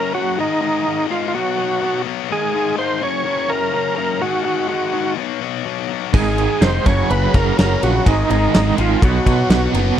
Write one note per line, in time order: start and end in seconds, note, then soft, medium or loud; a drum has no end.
0.00 0.13 F#2 medium
0.00 0.13 C#3 medium
0.00 0.14 F#3 loud
0.00 0.13 A#4 loud
0.14 0.36 F#2 medium
0.14 0.37 C#3 loud
0.14 0.37 F#3 loud
0.14 0.39 F#4 loud
0.37 0.60 G#2 loud
0.37 0.61 D#3 loud
0.37 0.61 G#3 loud
0.37 0.61 D#4 loud
0.61 0.84 G#2 medium
0.61 0.85 D#3 medium
0.61 0.86 G#3 medium
0.61 1.07 D#4 loud
0.85 1.08 G#2 medium
0.85 1.09 D#3 medium
0.85 1.09 G#3 medium
1.09 1.32 G#2 medium
1.09 1.32 D#3 medium
1.09 1.33 G#3 loud
1.09 1.26 F4 medium
1.28 1.34 F4 medium
1.34 1.57 B2 loud
1.34 1.57 F#3 loud
1.34 1.58 B3 loud
1.34 2.02 F#4 medium
1.58 1.80 B2 medium
1.58 1.81 F#3 medium
1.58 1.81 B3 loud
1.81 2.04 B2 medium
1.81 2.05 F#3 medium
1.81 2.06 B3 loud
2.06 2.28 B2 medium
2.06 2.29 F#3 loud
2.06 2.29 B3 loud
2.29 2.53 G#2 medium
2.29 2.53 D#3 loud
2.29 2.54 G#3 loud
2.29 2.76 G#4 loud
2.54 2.76 G#2 medium
2.54 2.77 D#3 medium
2.54 2.77 G#3 medium
2.77 3.00 G#2 medium
2.77 3.00 D#3 medium
2.77 3.00 G#3 loud
2.77 3.03 C5 loud
3.01 3.23 F#2 loud
3.01 3.24 C#3 loud
3.01 3.24 F#3 loud
3.01 3.52 C#5 loud
3.24 3.47 F#2 loud
3.24 3.47 C#3 loud
3.24 3.48 F#3 loud
3.48 3.71 F#2 medium
3.48 3.72 C#3 medium
3.48 3.72 F#3 loud
3.48 3.95 A#4 loud
3.72 3.95 F#2 loud
3.72 3.96 C#3 loud
3.72 3.97 F#3 loud
3.96 4.20 F#2 medium
3.96 4.19 C#3 loud
3.96 4.20 F#3 loud
3.96 4.22 A#4 loud
4.20 4.43 G#2 loud
4.20 4.44 D#3 loud
4.20 4.45 G#3 loud
4.20 4.43 F#4 medium
4.44 4.67 G#2 medium
4.44 4.68 D#3 medium
4.44 4.68 G#3 loud
4.44 4.67 F#4 medium
4.68 4.91 G#2 medium
4.68 4.92 D#3 medium
4.68 4.93 G#3 loud
4.68 5.14 F#4 medium
4.93 5.16 G#2 medium
4.93 5.16 D#3 medium
4.93 5.16 G#3 medium
5.17 5.40 B2 medium
5.17 5.41 F#3 loud
5.17 5.41 B3 loud
5.41 5.64 B2 medium
5.41 5.64 F#3 medium
5.41 5.65 B3 loud
5.65 5.87 B2 medium
5.65 5.88 F#3 medium
5.65 5.88 B3 medium
5.88 6.12 B2 medium
5.88 6.12 F#3 medium
5.88 6.12 B3 loud
6.12 6.46 G#1 loud
6.12 6.36 G#2 medium
6.12 6.37 D#3 loud
6.12 6.37 G#3 loud
6.12 6.64 G#4 loud
6.12 kick loud
6.12 crash loud
6.37 6.60 G#2 medium
6.37 6.61 D#3 medium
6.37 6.61 G#3 medium
6.37 ride medium
6.61 6.78 F1 medium
6.61 6.84 G#2 medium
6.61 6.85 D#3 medium
6.61 6.85 G#3 loud
6.61 6.87 C5 loud
6.61 snare loud
6.61 ride loud
6.85 7.02 F#1 medium
6.85 7.09 F#2 medium
6.85 7.09 C#3 medium
6.85 7.10 F#3 loud
6.85 7.11 C#5 loud
6.85 kick loud
6.85 ride medium
7.10 7.26 F#1 loud
7.10 7.32 F#2 medium
7.10 7.33 C#3 loud
7.10 7.34 F#3 loud
7.10 7.35 B4 loud
7.10 ride loud
7.34 7.50 F#1 loud
7.34 7.57 F#2 medium
7.34 7.58 C#3 loud
7.34 7.58 F#3 loud
7.34 7.57 A#4 medium
7.34 kick medium
7.34 ride medium
7.58 7.75 F#1 medium
7.58 7.81 F#2 medium
7.58 7.81 C#3 loud
7.58 7.82 F#3 loud
7.58 7.84 A#4 loud
7.58 snare loud
7.58 ride loud
7.82 7.99 A#1 medium
7.82 8.05 F#2 medium
7.82 8.05 C#3 loud
7.82 8.05 F#3 loud
7.82 8.08 F#4 loud
7.82 ride medium
8.06 8.22 G#1 loud
8.06 8.29 G#2 loud
8.06 8.29 D#3 loud
8.06 8.30 G#3 loud
8.06 8.30 D#4 medium
8.06 kick loud
8.06 ride loud
8.30 8.46 G#1 loud
8.30 8.52 G#2 medium
8.30 8.53 D#3 loud
8.30 8.54 G#3 loud
8.30 8.76 D#4 loud
8.30 ride medium
8.54 8.71 G#1 medium
8.54 8.77 G#2 medium
8.54 8.77 D#3 loud
8.54 8.78 G#3 medium
8.54 snare loud
8.54 ride loud
8.78 8.94 G#1 loud
8.78 9.01 G#2 medium
8.78 9.01 D#3 medium
8.78 9.01 G#3 loud
8.78 9.02 F4 medium
8.78 ride medium
9.02 9.18 B1 loud
9.02 9.25 B2 loud
9.02 9.26 F#3 medium
9.02 9.26 B3 loud
9.02 9.72 F#4 medium
9.02 kick loud
9.02 ride loud
9.26 9.49 B2 medium
9.26 9.42 B2 medium
9.26 9.50 F#3 medium
9.26 9.50 B3 loud
9.26 kick medium
9.26 ride medium
9.50 9.66 B1 loud
9.50 9.73 B2 medium
9.50 9.74 F#3 medium
9.50 9.74 B3 loud
9.50 snare loud
9.50 ride loud
9.74 9.90 F#1 medium
9.74 9.97 B2 medium
9.74 9.97 F#3 loud
9.74 9.98 B3 loud
9.74 ride medium